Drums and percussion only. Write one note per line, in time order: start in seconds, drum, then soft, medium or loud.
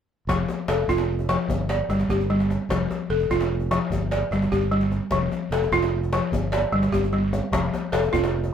0.29 djembe slap medium
0.29 djembe bass medium
0.49 djembe tone medium
0.68 djembe slap medium
0.89 djembe bass medium
0.98 djembe slap medium
1.19 djembe tone medium
1.29 djembe slap medium
1.50 djembe tone medium
1.50 djembe bass medium
1.69 djembe slap medium
1.90 djembe tone medium
2.00 djembe slap soft
2.09 djembe bass medium
2.20 djembe tone medium
2.30 djembe slap soft
2.40 djembe slap medium
2.50 djembe slap soft
2.50 djembe tone medium
2.70 djembe slap medium
2.70 djembe bass medium
2.91 djembe tone medium
3.20 djembe tone soft
3.30 djembe bass medium
3.40 djembe slap medium
3.60 djembe tone medium
3.71 djembe slap medium
3.92 djembe tone medium
3.92 djembe bass medium
4.12 djembe slap medium
4.32 djembe tone medium
4.42 djembe slap soft
4.52 djembe bass medium
4.62 djembe tone soft
4.72 djembe slap soft
4.81 djembe slap soft
4.92 djembe slap soft
4.92 djembe tone medium
5.11 djembe slap medium
5.11 djembe bass medium
5.32 djembe tone medium
5.52 djembe slap medium
5.62 djembe tone soft
5.72 djembe bass medium
5.82 djembe slap medium
6.03 djembe tone medium
6.13 djembe slap medium
6.33 djembe tone medium
6.33 djembe bass medium
6.53 djembe slap medium
6.83 djembe slap medium
6.93 djembe bass medium
7.03 djembe tone medium
7.13 djembe slap soft
7.33 djembe slap soft
7.33 djembe tone medium
7.53 djembe slap medium
7.53 djembe bass medium
7.64 djembe slap soft
7.73 djembe tone medium
7.93 djembe slap medium
8.03 djembe tone medium
8.14 djembe bass medium
8.23 djembe slap medium
8.33 djembe slap soft
8.44 djembe tone medium